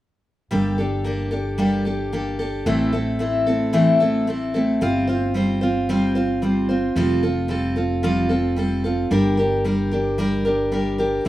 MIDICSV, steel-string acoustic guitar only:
0, 0, Header, 1, 2, 480
1, 0, Start_track
1, 0, Tempo, 537153
1, 464, Time_signature, 4, 2, 24, 8
1, 10083, End_track
2, 0, Start_track
2, 0, Title_t, "Steel-string acoustic guitar"
2, 0, Program_c, 0, 25
2, 453, Note_on_c, 0, 55, 66
2, 458, Note_on_c, 0, 58, 72
2, 462, Note_on_c, 0, 62, 62
2, 465, Note_on_c, 0, 67, 61
2, 468, Note_on_c, 0, 69, 68
2, 684, Note_off_c, 0, 69, 0
2, 695, Note_off_c, 0, 67, 0
2, 695, Note_on_c, 0, 69, 44
2, 698, Note_off_c, 0, 55, 0
2, 701, Note_off_c, 0, 58, 0
2, 703, Note_off_c, 0, 62, 0
2, 706, Note_on_c, 0, 67, 43
2, 715, Note_on_c, 0, 62, 37
2, 933, Note_off_c, 0, 62, 0
2, 933, Note_on_c, 0, 58, 51
2, 938, Note_off_c, 0, 67, 0
2, 939, Note_off_c, 0, 69, 0
2, 943, Note_on_c, 0, 62, 55
2, 948, Note_on_c, 0, 67, 51
2, 955, Note_on_c, 0, 69, 54
2, 1158, Note_off_c, 0, 69, 0
2, 1169, Note_on_c, 0, 69, 50
2, 1170, Note_off_c, 0, 67, 0
2, 1177, Note_off_c, 0, 62, 0
2, 1178, Note_off_c, 0, 58, 0
2, 1180, Note_on_c, 0, 67, 45
2, 1187, Note_on_c, 0, 62, 39
2, 1407, Note_off_c, 0, 62, 0
2, 1410, Note_on_c, 0, 55, 62
2, 1413, Note_off_c, 0, 67, 0
2, 1414, Note_off_c, 0, 69, 0
2, 1415, Note_on_c, 0, 58, 63
2, 1418, Note_on_c, 0, 62, 69
2, 1424, Note_on_c, 0, 67, 68
2, 1425, Note_on_c, 0, 69, 72
2, 1642, Note_off_c, 0, 69, 0
2, 1653, Note_on_c, 0, 69, 44
2, 1654, Note_off_c, 0, 67, 0
2, 1657, Note_off_c, 0, 55, 0
2, 1660, Note_off_c, 0, 58, 0
2, 1661, Note_off_c, 0, 62, 0
2, 1665, Note_on_c, 0, 67, 46
2, 1673, Note_on_c, 0, 62, 37
2, 1894, Note_off_c, 0, 62, 0
2, 1898, Note_off_c, 0, 69, 0
2, 1899, Note_off_c, 0, 67, 0
2, 1899, Note_on_c, 0, 58, 52
2, 1905, Note_on_c, 0, 62, 56
2, 1910, Note_on_c, 0, 67, 58
2, 1915, Note_on_c, 0, 69, 58
2, 2124, Note_off_c, 0, 69, 0
2, 2135, Note_on_c, 0, 69, 48
2, 2136, Note_off_c, 0, 67, 0
2, 2142, Note_off_c, 0, 58, 0
2, 2144, Note_off_c, 0, 62, 0
2, 2146, Note_on_c, 0, 67, 43
2, 2159, Note_on_c, 0, 62, 43
2, 2376, Note_off_c, 0, 69, 0
2, 2377, Note_on_c, 0, 45, 69
2, 2379, Note_on_c, 0, 52, 70
2, 2379, Note_on_c, 0, 57, 72
2, 2380, Note_off_c, 0, 67, 0
2, 2381, Note_off_c, 0, 62, 0
2, 2383, Note_on_c, 0, 64, 70
2, 2384, Note_on_c, 0, 60, 76
2, 2386, Note_on_c, 0, 69, 70
2, 2603, Note_off_c, 0, 69, 0
2, 2610, Note_off_c, 0, 64, 0
2, 2614, Note_on_c, 0, 69, 45
2, 2619, Note_off_c, 0, 60, 0
2, 2620, Note_on_c, 0, 64, 41
2, 2621, Note_off_c, 0, 45, 0
2, 2622, Note_off_c, 0, 52, 0
2, 2622, Note_off_c, 0, 57, 0
2, 2630, Note_on_c, 0, 60, 43
2, 2632, Note_on_c, 0, 57, 36
2, 2841, Note_off_c, 0, 57, 0
2, 2850, Note_off_c, 0, 60, 0
2, 2852, Note_on_c, 0, 57, 55
2, 2856, Note_off_c, 0, 64, 0
2, 2859, Note_off_c, 0, 69, 0
2, 2861, Note_on_c, 0, 60, 56
2, 2867, Note_on_c, 0, 64, 56
2, 2875, Note_on_c, 0, 69, 54
2, 3085, Note_off_c, 0, 69, 0
2, 3096, Note_off_c, 0, 64, 0
2, 3096, Note_on_c, 0, 69, 49
2, 3098, Note_off_c, 0, 57, 0
2, 3099, Note_off_c, 0, 60, 0
2, 3106, Note_on_c, 0, 64, 47
2, 3109, Note_on_c, 0, 60, 45
2, 3118, Note_on_c, 0, 57, 40
2, 3326, Note_off_c, 0, 57, 0
2, 3328, Note_off_c, 0, 60, 0
2, 3331, Note_on_c, 0, 45, 69
2, 3332, Note_off_c, 0, 64, 0
2, 3334, Note_on_c, 0, 52, 71
2, 3337, Note_off_c, 0, 69, 0
2, 3337, Note_on_c, 0, 57, 76
2, 3339, Note_on_c, 0, 60, 78
2, 3343, Note_on_c, 0, 64, 69
2, 3348, Note_on_c, 0, 69, 69
2, 3563, Note_off_c, 0, 69, 0
2, 3572, Note_off_c, 0, 64, 0
2, 3574, Note_on_c, 0, 69, 57
2, 3578, Note_off_c, 0, 45, 0
2, 3579, Note_off_c, 0, 52, 0
2, 3579, Note_off_c, 0, 60, 0
2, 3581, Note_off_c, 0, 57, 0
2, 3582, Note_on_c, 0, 64, 49
2, 3589, Note_on_c, 0, 60, 45
2, 3595, Note_on_c, 0, 57, 39
2, 3806, Note_off_c, 0, 57, 0
2, 3812, Note_off_c, 0, 60, 0
2, 3817, Note_on_c, 0, 57, 48
2, 3819, Note_off_c, 0, 69, 0
2, 3820, Note_off_c, 0, 64, 0
2, 3822, Note_on_c, 0, 60, 56
2, 3831, Note_on_c, 0, 64, 55
2, 3840, Note_on_c, 0, 69, 55
2, 4046, Note_off_c, 0, 69, 0
2, 4052, Note_off_c, 0, 64, 0
2, 4057, Note_on_c, 0, 69, 48
2, 4061, Note_off_c, 0, 57, 0
2, 4063, Note_off_c, 0, 60, 0
2, 4063, Note_on_c, 0, 64, 47
2, 4074, Note_on_c, 0, 60, 45
2, 4078, Note_on_c, 0, 57, 38
2, 4294, Note_off_c, 0, 60, 0
2, 4296, Note_off_c, 0, 57, 0
2, 4299, Note_on_c, 0, 55, 61
2, 4301, Note_off_c, 0, 69, 0
2, 4304, Note_off_c, 0, 64, 0
2, 4305, Note_on_c, 0, 60, 76
2, 4309, Note_on_c, 0, 65, 75
2, 4313, Note_on_c, 0, 72, 70
2, 4524, Note_off_c, 0, 72, 0
2, 4534, Note_on_c, 0, 72, 50
2, 4535, Note_off_c, 0, 65, 0
2, 4542, Note_off_c, 0, 55, 0
2, 4543, Note_off_c, 0, 60, 0
2, 4546, Note_on_c, 0, 65, 41
2, 4554, Note_on_c, 0, 60, 41
2, 4772, Note_off_c, 0, 60, 0
2, 4774, Note_on_c, 0, 55, 57
2, 4778, Note_off_c, 0, 65, 0
2, 4780, Note_off_c, 0, 72, 0
2, 4783, Note_on_c, 0, 60, 58
2, 4789, Note_on_c, 0, 65, 62
2, 4796, Note_on_c, 0, 72, 65
2, 5003, Note_off_c, 0, 72, 0
2, 5014, Note_on_c, 0, 72, 49
2, 5018, Note_off_c, 0, 65, 0
2, 5020, Note_off_c, 0, 55, 0
2, 5024, Note_off_c, 0, 60, 0
2, 5029, Note_on_c, 0, 65, 48
2, 5035, Note_on_c, 0, 60, 42
2, 5257, Note_off_c, 0, 60, 0
2, 5259, Note_off_c, 0, 72, 0
2, 5260, Note_off_c, 0, 65, 0
2, 5264, Note_on_c, 0, 55, 62
2, 5268, Note_on_c, 0, 60, 75
2, 5270, Note_on_c, 0, 65, 72
2, 5276, Note_on_c, 0, 72, 75
2, 5486, Note_off_c, 0, 72, 0
2, 5496, Note_off_c, 0, 65, 0
2, 5496, Note_on_c, 0, 72, 53
2, 5504, Note_off_c, 0, 55, 0
2, 5507, Note_off_c, 0, 60, 0
2, 5507, Note_on_c, 0, 65, 43
2, 5516, Note_on_c, 0, 60, 41
2, 5731, Note_off_c, 0, 60, 0
2, 5737, Note_on_c, 0, 55, 51
2, 5738, Note_off_c, 0, 65, 0
2, 5741, Note_off_c, 0, 72, 0
2, 5741, Note_on_c, 0, 60, 58
2, 5748, Note_on_c, 0, 65, 59
2, 5755, Note_on_c, 0, 72, 57
2, 5965, Note_off_c, 0, 72, 0
2, 5974, Note_off_c, 0, 65, 0
2, 5976, Note_on_c, 0, 72, 46
2, 5981, Note_off_c, 0, 55, 0
2, 5983, Note_off_c, 0, 60, 0
2, 5985, Note_on_c, 0, 65, 46
2, 5993, Note_on_c, 0, 60, 44
2, 6215, Note_off_c, 0, 60, 0
2, 6220, Note_off_c, 0, 72, 0
2, 6221, Note_off_c, 0, 65, 0
2, 6221, Note_on_c, 0, 53, 65
2, 6222, Note_on_c, 0, 55, 67
2, 6225, Note_on_c, 0, 60, 69
2, 6232, Note_on_c, 0, 65, 77
2, 6233, Note_on_c, 0, 69, 78
2, 6447, Note_off_c, 0, 69, 0
2, 6454, Note_off_c, 0, 65, 0
2, 6458, Note_on_c, 0, 69, 46
2, 6463, Note_off_c, 0, 53, 0
2, 6463, Note_off_c, 0, 55, 0
2, 6465, Note_off_c, 0, 60, 0
2, 6465, Note_on_c, 0, 65, 42
2, 6476, Note_on_c, 0, 60, 37
2, 6682, Note_off_c, 0, 60, 0
2, 6686, Note_on_c, 0, 55, 54
2, 6693, Note_off_c, 0, 65, 0
2, 6693, Note_on_c, 0, 60, 56
2, 6698, Note_off_c, 0, 69, 0
2, 6704, Note_on_c, 0, 65, 59
2, 6708, Note_on_c, 0, 69, 60
2, 6922, Note_off_c, 0, 69, 0
2, 6932, Note_off_c, 0, 65, 0
2, 6933, Note_on_c, 0, 69, 47
2, 6936, Note_off_c, 0, 55, 0
2, 6939, Note_off_c, 0, 60, 0
2, 6943, Note_on_c, 0, 65, 43
2, 6950, Note_on_c, 0, 60, 36
2, 7173, Note_off_c, 0, 60, 0
2, 7174, Note_off_c, 0, 65, 0
2, 7175, Note_on_c, 0, 53, 62
2, 7178, Note_on_c, 0, 55, 63
2, 7179, Note_off_c, 0, 69, 0
2, 7183, Note_on_c, 0, 60, 67
2, 7185, Note_on_c, 0, 65, 75
2, 7189, Note_on_c, 0, 69, 71
2, 7397, Note_off_c, 0, 69, 0
2, 7408, Note_on_c, 0, 69, 46
2, 7410, Note_off_c, 0, 65, 0
2, 7418, Note_off_c, 0, 60, 0
2, 7420, Note_off_c, 0, 53, 0
2, 7420, Note_on_c, 0, 65, 48
2, 7421, Note_off_c, 0, 55, 0
2, 7428, Note_on_c, 0, 60, 39
2, 7650, Note_off_c, 0, 60, 0
2, 7652, Note_on_c, 0, 55, 49
2, 7656, Note_off_c, 0, 65, 0
2, 7656, Note_off_c, 0, 69, 0
2, 7661, Note_on_c, 0, 60, 50
2, 7667, Note_on_c, 0, 65, 52
2, 7673, Note_on_c, 0, 69, 59
2, 7889, Note_off_c, 0, 69, 0
2, 7898, Note_off_c, 0, 55, 0
2, 7900, Note_off_c, 0, 65, 0
2, 7900, Note_on_c, 0, 69, 48
2, 7903, Note_off_c, 0, 60, 0
2, 7911, Note_on_c, 0, 65, 45
2, 7921, Note_on_c, 0, 60, 41
2, 8138, Note_on_c, 0, 55, 60
2, 8139, Note_off_c, 0, 60, 0
2, 8142, Note_off_c, 0, 69, 0
2, 8143, Note_on_c, 0, 62, 71
2, 8146, Note_off_c, 0, 65, 0
2, 8149, Note_on_c, 0, 67, 65
2, 8152, Note_on_c, 0, 70, 73
2, 8364, Note_off_c, 0, 70, 0
2, 8375, Note_on_c, 0, 70, 46
2, 8381, Note_off_c, 0, 55, 0
2, 8381, Note_off_c, 0, 67, 0
2, 8383, Note_off_c, 0, 62, 0
2, 8392, Note_on_c, 0, 67, 47
2, 8401, Note_on_c, 0, 62, 40
2, 8615, Note_off_c, 0, 62, 0
2, 8619, Note_off_c, 0, 70, 0
2, 8619, Note_on_c, 0, 55, 55
2, 8622, Note_off_c, 0, 67, 0
2, 8626, Note_on_c, 0, 62, 58
2, 8633, Note_on_c, 0, 67, 57
2, 8640, Note_on_c, 0, 70, 58
2, 8849, Note_off_c, 0, 70, 0
2, 8859, Note_off_c, 0, 67, 0
2, 8859, Note_on_c, 0, 70, 47
2, 8862, Note_off_c, 0, 55, 0
2, 8865, Note_off_c, 0, 62, 0
2, 8869, Note_on_c, 0, 67, 45
2, 8881, Note_on_c, 0, 62, 38
2, 9091, Note_off_c, 0, 62, 0
2, 9097, Note_off_c, 0, 67, 0
2, 9097, Note_on_c, 0, 55, 62
2, 9102, Note_off_c, 0, 70, 0
2, 9102, Note_on_c, 0, 62, 68
2, 9107, Note_on_c, 0, 67, 70
2, 9113, Note_on_c, 0, 70, 79
2, 9325, Note_off_c, 0, 70, 0
2, 9335, Note_off_c, 0, 67, 0
2, 9336, Note_on_c, 0, 70, 49
2, 9340, Note_off_c, 0, 55, 0
2, 9343, Note_off_c, 0, 62, 0
2, 9345, Note_on_c, 0, 67, 44
2, 9354, Note_on_c, 0, 62, 41
2, 9569, Note_off_c, 0, 62, 0
2, 9576, Note_on_c, 0, 55, 54
2, 9578, Note_off_c, 0, 67, 0
2, 9580, Note_off_c, 0, 70, 0
2, 9580, Note_on_c, 0, 62, 53
2, 9589, Note_on_c, 0, 67, 57
2, 9593, Note_on_c, 0, 70, 59
2, 9804, Note_off_c, 0, 70, 0
2, 9814, Note_off_c, 0, 67, 0
2, 9815, Note_on_c, 0, 70, 47
2, 9820, Note_off_c, 0, 55, 0
2, 9822, Note_off_c, 0, 62, 0
2, 9825, Note_on_c, 0, 67, 48
2, 9831, Note_on_c, 0, 62, 38
2, 10053, Note_on_c, 0, 55, 66
2, 10057, Note_off_c, 0, 62, 0
2, 10059, Note_off_c, 0, 67, 0
2, 10059, Note_off_c, 0, 70, 0
2, 10083, Note_off_c, 0, 55, 0
2, 10083, End_track
0, 0, End_of_file